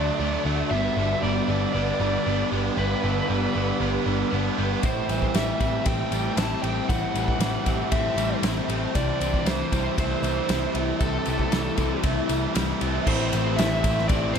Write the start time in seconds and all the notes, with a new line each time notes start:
Already playing: D3 F#3 A3 D4 F#4 D5 A5
0.19 D2 D3 F#3 A3 D4
0.45 D2 D3 F#3 A3 D4 F#4
0.70 G1 G2 D3 G3 B3 D4 G4 E5 B5
0.97 G1 G2 D3 G3 B3 D4
1.23 G1 G2 D3 G3 B3 D4 D5
1.48 G1 G2 D3 G3 B3 D4 G4
1.73 G1 G2 D3 G3 B3 D4 D5
1.99 G1 G2 D3 G3 B3 D4
2.26 G1 G2 D3 G3 B3 D4
2.51 G1 G2 D3 G3 B3 D4 G4
2.76 G1 G2 D3 G3 B3 D4 B4
3.02 G1 G2 D3 G3 B3 D4
3.28 G1 G2 D3 G3 B3 D4
3.53 G1 G2 D3 G3 B3 D4 G4
3.80 G1 G2 D3 G3 B3 D4
4.05 G1 G2 D3 G3 B3 D4
4.30 G1 G2 D3 G3 B3 D4
4.57 G1 G2 D3 G3 B3 D4 G4
4.83 A1 A2 E3 A3 C4 E4 G4 C5 A5, kick, ride, tambourine
5.08 A1 A2 E3 G3 A3 C4 E4, ride, tambourine
5.22 kick
5.34 A1 A2 E3 G3 A3 C4 E4 E5, snare, ride, tambourine
5.60 A1 A2 E3 A3 C4 E4 G4, kick, ride, tambourine
5.86 A1 A2 E3 A3 C4 E4 G5, kick, ride, tambourine
6.11 A1 A2 E3 G3 A3 C4 E4, ride, tambourine
6.37 A1 A2 E3 A3 C4 E4 A5, snare, ride, tambourine
6.62 A1 A2 E3 G3 A3 C4 E4 G4 G5, ride
6.89 A1 A2 E3 A3 C4 E4 F#5 A5, kick, ride, tambourine
7.14 A1 A2 E3 G3 A3 C4 E4, ride, tambourine
7.28 kick
7.39 A1 A2 E3 G3 A3 C4 E4, snare, ride, tambourine
7.66 A1 A2 E3 A3 C4 E4 G4, kick, ride, tambourine
7.91 A1 A2 E3 A3 C4 E4 E5, kick, ride, tambourine
8.16 A1 A2 E3 G3 A3 C4 E4, ride, tambourine
8.43 A1 A2 E3 A3 C4 E4, snare, ride, tambourine
8.69 A1 A2 E3 G3 A3 C4 E4 G4, ride
8.95 C2 C3 E3 G3 C4 E4 D5 A5, kick, ride, tambourine
9.20 C2 C3 E3 G3 C4 E4, ride, tambourine
9.34 kick
9.45 C2 C3 E3 G3 A3 C4 E4 C5, snare, ride, tambourine
9.72 C2 C3 E3 G3 C4 E4 G4, kick, ride, tambourine
9.97 C2 C3 E3 G3 A3 C4 E4 C5, kick, ride, tambourine
10.22 C2 C3 E3 G3 C4 E4, ride, tambourine
10.49 C2 C3 E3 G3 A3 C4 E4, snare, ride, tambourine
10.74 C2 C3 E3 G3 A3 C4 E4 G4, ride
11.00 C2 C3 E3 G3 C4 E4 A4, kick, ride, tambourine
11.25 C2 C3 E3 G3 C4 E4, ride, tambourine
11.39 kick
11.51 C2 C3 E3 G3 A3 C4 E4, snare, ride, tambourine
11.77 C2 C3 E3 G3 C4 E4 G4, kick, ride, tambourine
12.03 C2 C3 E3 G3 A3 C4 E4, kick, ride
12.29 C2 C3 E3 G3 C4 E4, ride, tambourine
12.54 C2 C3 E3 G3 A3 C4 E4, snare, ride, tambourine
12.80 C2 C3 E3 G3 A3 C4 E4 G4, ride, tambourine
13.05 A1 A2 E3 A3 C4 E4 G4 A4 C5 A5, kick, crash, tambourine
13.31 A1 A3 C4 E4 A4, ride, tambourine
13.56 A1 E3 A3 C4 E4 A4 E5, snare, ride, tambourine
13.83 A1 A2 E3 A3 C4 E4 A4, kick, ride, tambourine
13.98 snare
14.08 A1 A2 E3 A3 C4 E4 G4 A4 D5, kick, ride, tambourine
14.33 A1 A3 C4 E4 A4 C5, ride